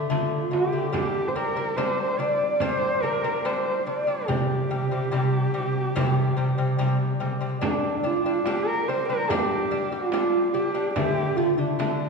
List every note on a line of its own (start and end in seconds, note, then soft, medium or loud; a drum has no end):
0.10 0.43 D3 medium
0.10 0.43 A3 loud
0.10 0.54 F4 medium
0.10 frame drum medium
0.51 0.68 D3 medium
0.51 0.68 A3 medium
0.51 0.93 G4 medium
0.51 frame drum medium
0.72 0.89 D3 medium
0.72 0.90 A3 medium
0.92 1.27 G3 medium
0.92 1.27 D4 loud
0.92 1.29 G4 loud
0.92 frame drum medium
1.28 1.38 C5 medium
1.36 1.52 G3 medium
1.36 1.52 D4 medium
1.36 1.78 A#4 medium
1.36 frame drum soft
1.56 1.73 G3 medium
1.56 1.73 D4 medium
1.77 2.11 G3 medium
1.77 2.11 D4 loud
1.77 2.21 C5 loud
1.77 frame drum medium
2.19 2.53 G3 medium
2.19 2.53 D4 medium
2.19 2.63 D5 medium
2.41 frame drum soft
2.60 2.95 G3 loud
2.60 2.95 D4 loud
2.60 3.04 C5 loud
2.60 frame drum medium
3.03 3.20 G3 medium
3.03 3.20 D4 medium
3.03 3.47 A#4 medium
3.24 3.41 G3 medium
3.24 3.41 D4 medium
3.24 frame drum soft
3.45 3.78 G3 medium
3.45 3.79 D4 loud
3.45 3.89 C5 medium
3.45 frame drum soft
3.87 4.03 G3 medium
3.87 4.04 D4 medium
3.87 4.30 D5 medium
4.07 4.24 G3 medium
4.07 4.24 D4 medium
4.28 4.62 C3 medium
4.28 4.62 G3 loud
4.28 7.21 G4 medium
4.28 frame drum medium
4.70 4.87 C3 medium
4.70 4.87 G3 medium
4.70 frame drum soft
4.91 5.08 C3 medium
4.91 5.08 G3 medium
5.12 5.45 C3 medium
5.12 5.46 G3 loud
5.12 frame drum soft
5.54 5.87 C3 medium
5.54 5.88 G3 medium
5.75 frame drum soft
5.95 6.29 C3 loud
5.95 6.29 G3 loud
5.95 frame drum medium
6.37 6.54 C3 medium
6.37 6.54 G3 medium
6.58 6.75 C3 medium
6.58 6.75 G3 medium
6.58 frame drum soft
6.78 7.12 C3 loud
6.78 7.13 G3 loud
6.78 frame drum soft
7.20 7.37 C3 medium
7.20 7.37 G3 medium
7.20 frame drum soft
7.40 7.58 C3 medium
7.40 7.58 G3 medium
7.61 7.96 G3 medium
7.61 7.95 D4 loud
7.61 frame drum medium
7.65 8.08 D4 medium
8.04 8.21 G3 medium
8.04 8.21 D4 medium
8.04 8.49 F4 medium
8.26 8.42 G3 medium
8.26 8.42 D4 medium
8.46 8.80 G3 medium
8.46 8.80 D4 loud
8.46 8.69 G4 loud
8.46 frame drum medium
8.68 8.90 A#4 loud
8.88 9.05 G3 medium
8.88 9.05 D4 medium
8.88 9.09 C5 loud
8.88 frame drum soft
9.09 9.26 G3 medium
9.09 9.26 D4 medium
9.09 9.32 A#4 loud
9.30 9.64 G3 loud
9.30 9.64 D4 loud
9.30 9.94 G4 loud
9.30 frame drum medium
9.71 9.88 G3 medium
9.71 9.88 D4 medium
9.71 frame drum soft
9.92 10.09 G3 medium
9.92 10.09 D4 medium
9.92 10.56 F4 loud
10.12 10.47 G3 loud
10.12 10.47 D4 loud
10.12 frame drum medium
10.54 10.71 G3 medium
10.54 10.71 D4 medium
10.54 10.94 G4 medium
10.54 frame drum soft
10.74 10.92 G3 medium
10.74 10.92 D4 medium
10.94 11.29 D3 medium
10.94 11.30 A3 loud
10.94 11.39 G4 loud
10.94 frame drum medium
11.37 11.54 D3 medium
11.37 11.54 A3 medium
11.37 11.59 F4 medium
11.58 11.75 D3 medium
11.58 11.75 A3 medium
11.58 12.09 D4 medium
11.79 12.09 D3 loud
11.79 12.09 A3 loud
11.79 frame drum medium